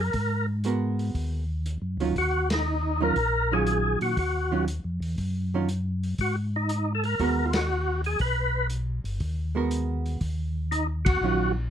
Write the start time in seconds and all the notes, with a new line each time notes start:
Already playing: F#2
0.01 A#4
0.13 G#2, kick, open hi-hat
0.64 G#3 B3 F#4 A#4, closed hi-hat
0.99 open hi-hat
1.14 D#2, kick, open hi-hat
1.66 closed hi-hat
1.82 F#2
1.97 D2 D#3 F#3, open hi-hat
2.01 C#4 F4
2.16 D#2 F#4, kick, open hi-hat
2.50 D#4, snare, ride
3.01 D#3 F#3 C#4 F4 A#4
3.16 A#1, kick, open hi-hat
3.52 D#3 F#3 C#4 F4 G#4
3.67 closed hi-hat
4.01 A#2 F#4, open hi-hat
4.17 D#2 F#4, kick, open hi-hat
4.51 D#3 F#3 C#4 F4
4.68 closed hi-hat
4.84 F2
5.00 E2, open hi-hat
5.18 F#2, kick, open hi-hat
5.54 D#3 F#3 C#4 F4
5.69 closed hi-hat
6.03 open hi-hat
6.18 G#2 F#4, kick, open hi-hat
6.56 D#4
6.69 closed hi-hat
6.95 A4
7.04 A#4, open hi-hat
7.19 D#2 G#3 B3 F#4 A#4, kick, open hi-hat
7.46 F4
7.53 F#4, snare, ride
8.04 G#4, open hi-hat
8.19 B1 B4, kick, open hi-hat
8.70 closed hi-hat
9.04 G1, open hi-hat
9.20 D#2, kick, open hi-hat
9.55 G#3 B3 F#4 A#4
9.71 closed hi-hat
10.06 open hi-hat
10.21 D#2, kick, open hi-hat
10.71 D#4, closed hi-hat
11.05 F#4, kick, ride
11.21 A#1 D#3 F#3 C#4 F4